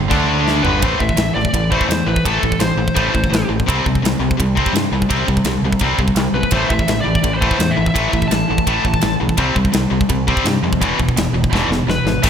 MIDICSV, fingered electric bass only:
0, 0, Header, 1, 2, 480
1, 0, Start_track
1, 0, Key_signature, 0, "minor"
1, 0, Tempo, 356718
1, 1103, Time_signature, 4, 2, 24, 8
1, 16548, End_track
2, 0, Start_track
2, 0, Title_t, "Fingered electric bass"
2, 0, Program_c, 0, 33
2, 139, Note_on_c, 0, 38, 85
2, 810, Note_off_c, 0, 38, 0
2, 862, Note_on_c, 0, 31, 93
2, 1086, Note_off_c, 0, 31, 0
2, 1111, Note_on_c, 0, 33, 76
2, 1267, Note_off_c, 0, 33, 0
2, 1343, Note_on_c, 0, 33, 82
2, 1502, Note_off_c, 0, 33, 0
2, 1570, Note_on_c, 0, 33, 78
2, 1733, Note_off_c, 0, 33, 0
2, 1833, Note_on_c, 0, 33, 79
2, 1988, Note_off_c, 0, 33, 0
2, 2064, Note_on_c, 0, 33, 91
2, 2381, Note_off_c, 0, 33, 0
2, 2540, Note_on_c, 0, 40, 83
2, 2700, Note_off_c, 0, 40, 0
2, 2781, Note_on_c, 0, 33, 74
2, 2940, Note_off_c, 0, 33, 0
2, 3038, Note_on_c, 0, 33, 77
2, 3191, Note_off_c, 0, 33, 0
2, 3275, Note_on_c, 0, 33, 82
2, 3430, Note_off_c, 0, 33, 0
2, 3484, Note_on_c, 0, 33, 85
2, 3649, Note_off_c, 0, 33, 0
2, 3731, Note_on_c, 0, 33, 87
2, 3893, Note_off_c, 0, 33, 0
2, 3981, Note_on_c, 0, 33, 86
2, 4140, Note_off_c, 0, 33, 0
2, 4229, Note_on_c, 0, 33, 76
2, 4385, Note_off_c, 0, 33, 0
2, 4453, Note_on_c, 0, 33, 86
2, 4615, Note_off_c, 0, 33, 0
2, 4697, Note_on_c, 0, 33, 83
2, 4857, Note_off_c, 0, 33, 0
2, 4951, Note_on_c, 0, 36, 83
2, 5107, Note_off_c, 0, 36, 0
2, 5192, Note_on_c, 0, 36, 85
2, 5347, Note_off_c, 0, 36, 0
2, 5423, Note_on_c, 0, 36, 87
2, 5581, Note_off_c, 0, 36, 0
2, 5647, Note_on_c, 0, 36, 83
2, 5811, Note_off_c, 0, 36, 0
2, 5908, Note_on_c, 0, 36, 90
2, 6223, Note_off_c, 0, 36, 0
2, 6366, Note_on_c, 0, 43, 85
2, 6530, Note_off_c, 0, 43, 0
2, 6618, Note_on_c, 0, 36, 81
2, 6777, Note_off_c, 0, 36, 0
2, 6868, Note_on_c, 0, 36, 86
2, 7024, Note_off_c, 0, 36, 0
2, 7112, Note_on_c, 0, 36, 80
2, 7267, Note_off_c, 0, 36, 0
2, 7325, Note_on_c, 0, 36, 83
2, 7489, Note_off_c, 0, 36, 0
2, 7565, Note_on_c, 0, 36, 89
2, 7729, Note_off_c, 0, 36, 0
2, 7820, Note_on_c, 0, 36, 83
2, 7979, Note_off_c, 0, 36, 0
2, 8056, Note_on_c, 0, 36, 83
2, 8216, Note_off_c, 0, 36, 0
2, 8276, Note_on_c, 0, 36, 83
2, 8442, Note_off_c, 0, 36, 0
2, 8511, Note_on_c, 0, 35, 76
2, 8679, Note_off_c, 0, 35, 0
2, 8773, Note_on_c, 0, 33, 85
2, 8934, Note_off_c, 0, 33, 0
2, 9014, Note_on_c, 0, 33, 77
2, 9175, Note_off_c, 0, 33, 0
2, 9259, Note_on_c, 0, 33, 82
2, 9418, Note_off_c, 0, 33, 0
2, 9500, Note_on_c, 0, 33, 82
2, 9659, Note_off_c, 0, 33, 0
2, 9737, Note_on_c, 0, 33, 91
2, 10055, Note_off_c, 0, 33, 0
2, 10216, Note_on_c, 0, 40, 76
2, 10376, Note_off_c, 0, 40, 0
2, 10462, Note_on_c, 0, 33, 80
2, 10620, Note_off_c, 0, 33, 0
2, 10702, Note_on_c, 0, 33, 85
2, 10860, Note_off_c, 0, 33, 0
2, 10942, Note_on_c, 0, 33, 83
2, 11100, Note_off_c, 0, 33, 0
2, 11177, Note_on_c, 0, 33, 74
2, 11336, Note_off_c, 0, 33, 0
2, 11441, Note_on_c, 0, 33, 86
2, 11593, Note_off_c, 0, 33, 0
2, 11663, Note_on_c, 0, 33, 94
2, 11821, Note_off_c, 0, 33, 0
2, 11902, Note_on_c, 0, 33, 78
2, 12060, Note_off_c, 0, 33, 0
2, 12155, Note_on_c, 0, 33, 82
2, 12309, Note_off_c, 0, 33, 0
2, 12399, Note_on_c, 0, 35, 88
2, 12552, Note_off_c, 0, 35, 0
2, 12614, Note_on_c, 0, 36, 82
2, 12775, Note_off_c, 0, 36, 0
2, 12857, Note_on_c, 0, 36, 84
2, 13017, Note_off_c, 0, 36, 0
2, 13112, Note_on_c, 0, 36, 82
2, 13267, Note_off_c, 0, 36, 0
2, 13340, Note_on_c, 0, 36, 90
2, 13499, Note_off_c, 0, 36, 0
2, 13579, Note_on_c, 0, 36, 90
2, 13897, Note_off_c, 0, 36, 0
2, 14052, Note_on_c, 0, 43, 88
2, 14214, Note_off_c, 0, 43, 0
2, 14298, Note_on_c, 0, 41, 88
2, 14543, Note_on_c, 0, 28, 82
2, 14564, Note_off_c, 0, 41, 0
2, 14702, Note_off_c, 0, 28, 0
2, 14786, Note_on_c, 0, 28, 75
2, 14944, Note_off_c, 0, 28, 0
2, 15011, Note_on_c, 0, 28, 75
2, 15174, Note_off_c, 0, 28, 0
2, 15246, Note_on_c, 0, 28, 89
2, 15411, Note_off_c, 0, 28, 0
2, 15507, Note_on_c, 0, 28, 86
2, 15665, Note_off_c, 0, 28, 0
2, 15723, Note_on_c, 0, 28, 80
2, 15889, Note_off_c, 0, 28, 0
2, 15972, Note_on_c, 0, 28, 84
2, 16135, Note_off_c, 0, 28, 0
2, 16208, Note_on_c, 0, 32, 82
2, 16372, Note_off_c, 0, 32, 0
2, 16470, Note_on_c, 0, 33, 87
2, 16548, Note_off_c, 0, 33, 0
2, 16548, End_track
0, 0, End_of_file